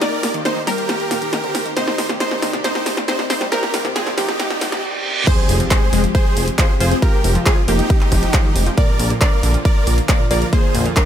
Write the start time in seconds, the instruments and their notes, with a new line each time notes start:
Already playing: riser
0.01 synth pluck D#4 D5, supersaw synth A#4 D5, snare, closed hi-hat
0.23 synth pluck A#2, snare, open hi-hat
0.34 synth pluck D#3, closed hi-hat
0.45 supersaw synth D#4 C5, synth pluck C5, snare, closed hi-hat
0.56 synth pluck D#3
0.67 synth pluck G3 A#4, supersaw synth G4 A#4, snare, open hi-hat
0.78 closed hi-hat
0.89 snare, closed hi-hat
1.00 closed hi-hat
1.11 synth pluck A#2, snare, open hi-hat
1.22 synth pluck D#3, closed hi-hat
1.33 synth pluck D#3, snare, closed hi-hat
1.44 synth pluck D3, closed hi-hat
1.55 snare, open hi-hat
1.66 synth pluck D#3, closed hi-hat
1.77 synth pluck C3 C5, supersaw synth D#4 C5, snare, closed hi-hat
1.88 snare
1.98 snare, open hi-hat
2.09 synth pluck C3, snare, closed hi-hat
2.20 synth pluck D#3 C5, supersaw synth D#4 C5, snare, closed hi-hat
2.31 snare
2.42 synth pluck D#3, snare, open hi-hat
2.53 synth pluck C3, snare, closed hi-hat
2.64 supersaw synth D#4 C5, synth pluck C5, snare, closed hi-hat
2.75 snare, closed hi-hat
2.86 snare, open hi-hat
2.97 snare, closed hi-hat
3.08 synth pluck C4 C5, supersaw synth D#4 C5, snare, closed hi-hat
3.19 synth pluck C3, snare, closed hi-hat
3.30 synth pluck C4 C5, supersaw synth D#4 C5, snare, open hi-hat
3.41 synth pluck G3, snare, closed hi-hat
3.52 synth pluck C4 A#4, supersaw synth G4 A#4, snare, closed hi-hat
3.63 snare, closed hi-hat
3.74 synth pluck G2, snare, open hi-hat
3.85 synth pluck C3, snare, closed hi-hat
3.96 supersaw synth C4 G#4, synth pluck G#4, snare, closed hi-hat
4.07 synth pluck C3, snare, closed hi-hat
4.17 synth pluck F3 G4, supersaw synth D#4 G4, snare, open hi-hat
4.29 snare, closed hi-hat
4.39 snare, closed hi-hat, reverse cymbal
4.50 snare, closed hi-hat
4.61 synth pluck G2, snare, open hi-hat
4.72 synth pluck C3, snare, closed hi-hat
5.27 synth pluck F3 C5, supersaw synth G#4 C5, kick, closed hi-hat, crash, impact
5.49 analog synth bass F1, open hi-hat
5.60 synth pluck F3, closed hi-hat
5.71 synth pluck G#3 C5, supersaw synth G#4 C5, kick, clap, closed hi-hat
5.93 analog synth bass F1, synth pluck G#3, open hi-hat
6.04 synth pluck F3, closed hi-hat
6.15 supersaw synth G#4 C5, synth pluck C5, kick, closed hi-hat
6.37 analog synth bass F1, open hi-hat
6.48 closed hi-hat
6.58 synth pluck F4 C5, supersaw synth G#4 C5, kick, clap, closed hi-hat
6.69 synth pluck F3
6.80 analog synth bass F1, synth pluck F4 C5, supersaw synth G#4 C5, open hi-hat
6.91 synth pluck C4, closed hi-hat
7.02 synth pluck F4 A#4, supersaw synth G4 A#4, kick, closed hi-hat
7.24 analog synth bass F1, synth pluck C3, open hi-hat
7.35 synth pluck F3, closed hi-hat
7.46 supersaw synth F4 G#4, synth pluck G#4, kick, clap, closed hi-hat
7.57 synth pluck F3
7.68 analog synth bass F1, synth pluck A#3 G4, supersaw synth D#4 G4, open hi-hat
7.79 closed hi-hat
7.90 kick, closed hi-hat
8.01 clap
8.12 analog synth bass F1, synth pluck C3, kick, open hi-hat
8.23 synth pluck F3, closed hi-hat
8.34 synth pluck F3, kick, clap, closed hi-hat
8.45 synth pluck D#3
8.56 analog synth bass F1, open hi-hat
8.66 synth pluck F3, closed hi-hat
8.78 synth pluck A#2 D5, supersaw synth A#4 D5, kick, closed hi-hat
8.99 analog synth bass A#1, open hi-hat
9.10 synth pluck A#2, closed hi-hat
9.21 synth pluck D3 D5, supersaw synth A#4 D5, kick, clap, closed hi-hat
9.43 analog synth bass A#1, synth pluck D3, open hi-hat
9.54 synth pluck A#2, closed hi-hat
9.65 supersaw synth A#4 D5, synth pluck D5, kick, closed hi-hat
9.87 analog synth bass A#1, open hi-hat
9.98 closed hi-hat
10.09 synth pluck A#3 D5, supersaw synth A#4 D5, kick, clap, closed hi-hat
10.20 synth pluck A#2
10.31 analog synth bass A#1, synth pluck A#3 D5, supersaw synth A#4 D5, open hi-hat
10.42 synth pluck F3, closed hi-hat
10.53 synth pluck A#3 C5, supersaw synth G#4 C5, kick, closed hi-hat
10.75 analog synth bass A#1, synth pluck F2, open hi-hat
10.86 synth pluck A#2, closed hi-hat
10.96 supersaw synth D4 A#4, synth pluck A#4, kick, clap, closed hi-hat